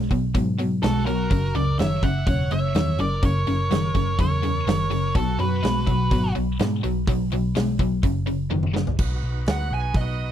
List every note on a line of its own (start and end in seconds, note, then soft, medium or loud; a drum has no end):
0.01 snare soft
0.11 0.34 B1 medium
0.11 0.33 B2 medium
0.11 0.33 F#3 medium
0.11 kick medium
0.11 open hi-hat soft
0.35 0.80 G#2 medium
0.35 0.57 B2 medium
0.35 0.57 F#3 medium
0.35 kick loud
0.35 open hi-hat medium
0.59 0.81 B2 medium
0.59 0.81 F#3 medium
0.59 open hi-hat soft
0.83 1.29 B1 medium
0.83 1.05 B2 medium
0.83 1.05 G#3 medium
0.83 1.06 F#4 medium
0.83 1.06 A4 medium
0.83 snare loud
0.83 open hi-hat medium
1.06 1.29 B2 medium
1.06 1.29 F#3 medium
1.06 1.53 F#4 medium
1.06 1.56 A#4 medium
1.06 open hi-hat medium
1.30 1.54 F#1 medium
1.30 1.52 F#2 medium
1.30 1.53 C#3 medium
1.30 kick loud
1.30 open hi-hat medium
1.55 1.78 C#2 medium
1.55 1.77 F#2 medium
1.55 1.77 C#3 medium
1.55 1.79 A#4 medium
1.55 1.78 D5 medium
1.55 open hi-hat medium
1.79 2.02 F#1 medium
1.79 2.01 F#2 medium
1.79 2.01 D#3 medium
1.79 2.02 C#5 medium
1.79 2.04 E5 medium
1.79 snare loud
1.79 open hi-hat medium
2.03 2.26 F#1 medium
2.03 2.25 F#2 medium
2.03 2.25 C#3 medium
2.03 2.26 E5 medium
2.03 2.26 F#5 loud
2.03 kick medium
2.03 open hi-hat soft
2.27 2.50 E1 medium
2.27 2.49 F#2 medium
2.27 2.49 C#3 medium
2.27 2.50 C#5 medium
2.27 2.50 F#5 loud
2.27 kick loud
2.27 open hi-hat medium
2.51 2.74 F#1 medium
2.51 2.73 F#2 medium
2.51 2.73 C#3 medium
2.51 2.97 C#5 medium
2.51 3.00 E5 loud
2.51 open hi-hat soft
2.74 2.98 E2 medium
2.74 2.97 F#2 medium
2.74 2.97 D#3 medium
2.74 snare loud
2.74 open hi-hat medium
2.98 3.22 F#1 medium
2.98 3.21 F#2 medium
2.98 3.21 C#3 medium
2.98 3.22 A#4 medium
2.98 3.25 D5 medium
2.98 open hi-hat soft
3.23 3.46 F#1 medium
3.23 3.45 F#2 medium
3.23 3.45 C#3 medium
3.23 4.16 A#4 medium
3.23 4.16 C#5 loud
3.23 kick loud
3.23 open hi-hat medium
3.47 3.70 F#1 medium
3.47 3.69 F#2 medium
3.47 3.69 C#3 medium
3.47 open hi-hat soft
3.71 3.94 F#1 medium
3.71 3.93 F#2 medium
3.71 3.93 D#3 medium
3.71 snare loud
3.71 open hi-hat medium
3.85 snare soft
3.95 4.18 F#1 medium
3.95 4.17 F#2 medium
3.95 4.17 C#3 medium
3.95 kick medium
3.95 open hi-hat medium
4.18 4.64 E2 medium
4.18 4.41 F#2 medium
4.18 4.41 C#3 medium
4.18 5.13 A#4 medium
4.18 5.12 C#5 medium
4.18 kick loud
4.18 open hi-hat medium
4.42 4.65 F#2 medium
4.42 4.65 C#3 medium
4.42 open hi-hat medium
4.67 5.12 F#1 medium
4.67 4.89 F#2 medium
4.67 4.89 D#3 medium
4.67 snare loud
4.67 open hi-hat medium
4.90 5.13 F#2 medium
4.90 5.13 C#3 medium
4.90 open hi-hat medium
5.15 5.38 B1 medium
5.15 5.37 B2 medium
5.15 5.37 F#3 medium
5.15 5.39 F#4 medium
5.15 5.40 A4 medium
5.15 kick loud
5.15 open hi-hat medium
5.39 5.62 F#2 medium
5.39 5.61 B2 medium
5.39 5.61 F#3 medium
5.39 6.32 B4 medium
5.39 open hi-hat soft
5.43 6.33 F#4 medium
5.63 5.86 B1 medium
5.63 5.85 B2 medium
5.63 5.85 G#3 medium
5.63 snare loud
5.63 open hi-hat medium
5.87 6.10 B1 medium
5.87 6.09 B2 medium
5.87 6.09 F#3 medium
5.87 kick medium
5.87 open hi-hat soft
6.11 6.34 G#1 medium
6.11 6.33 B2 medium
6.11 6.33 F#3 medium
6.11 kick loud
6.11 open hi-hat medium
6.35 6.59 B1 medium
6.35 6.57 B2 medium
6.35 6.57 F#3 medium
6.35 open hi-hat soft
6.59 6.82 G#2 medium
6.59 6.81 B2 medium
6.59 6.81 G#3 medium
6.59 snare loud
6.59 open hi-hat medium
6.83 7.06 B1 medium
6.83 7.05 B2 medium
6.83 7.05 F#3 medium
6.83 open hi-hat soft
7.07 7.30 B1 medium
7.07 7.29 B2 medium
7.07 7.30 F#3 medium
7.07 kick loud
7.07 open hi-hat medium
7.31 7.55 B1 medium
7.31 7.53 B2 medium
7.31 7.54 F#3 medium
7.31 open hi-hat soft
7.55 7.78 B1 medium
7.55 7.77 B2 medium
7.55 7.77 G#3 medium
7.55 snare loud
7.55 open hi-hat medium
7.79 8.02 B1 medium
7.79 8.01 B2 medium
7.79 8.01 F#3 medium
7.79 kick medium
7.79 open hi-hat soft
8.03 8.49 F#1 medium
8.03 8.25 F#2 medium
8.03 8.25 C#3 medium
8.03 kick loud
8.03 open hi-hat medium
8.26 8.48 F#2 medium
8.26 8.49 C#3 medium
8.26 open hi-hat soft
8.51 8.97 F#1 medium
8.51 8.73 F#2 medium
8.51 8.73 D#3 medium
8.51 high tom medium
8.63 mid tom medium
8.74 8.96 F#2 medium
8.74 8.96 C#3 medium
8.74 snare medium
8.87 floor tom medium
8.99 9.21 B1 medium
8.99 10.32 B3 medium
8.99 10.32 D#4 medium
8.99 10.32 F#4 medium
8.99 10.32 B4 medium
8.99 kick loud
8.99 crash loud
9.23 9.45 B1 medium
9.46 9.69 D2 medium
9.46 snare loud
9.46 open hi-hat medium
9.50 9.72 F#5 medium
9.71 9.93 B1 medium
9.71 9.96 G#5 medium
9.94 10.32 B1 medium
9.94 10.32 D#5 medium
9.94 kick loud
9.94 open hi-hat medium